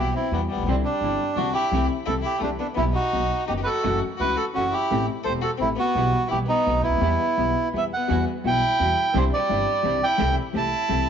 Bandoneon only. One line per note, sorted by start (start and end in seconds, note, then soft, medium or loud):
0.00 0.14 G4 medium
0.16 0.33 E4 medium
0.33 0.41 B3 medium
0.51 0.69 B3 medium
0.68 0.76 C4 medium
0.85 1.39 D4 medium
1.37 1.53 F#4 medium
1.54 1.87 G4 medium
2.07 2.15 A4 medium
2.25 2.41 G4 medium
2.42 2.50 D4 medium
2.59 2.67 D4 medium
2.76 2.84 E4 medium
2.95 3.45 F#4 medium
3.48 3.53 G4 medium
3.63 3.99 A4 medium
3.63 3.68 B4 medium
4.20 4.37 B4 medium
4.37 4.45 A4 medium
4.55 4.74 F#4 medium
4.73 5.06 G4 medium
5.25 5.33 C5 medium
5.43 5.51 A4 medium
5.61 5.69 E4 medium
5.79 6.28 F#4 medium
6.30 6.39 G4 medium
6.49 6.82 D#4 medium
6.83 7.68 E4 medium
7.78 7.84 E5 medium
7.93 8.25 F#5 medium
8.47 9.18 G5 medium
9.17 9.24 C5 medium
9.33 10.05 D5 medium
10.04 10.35 G5 loud
10.57 11.09 A5 loud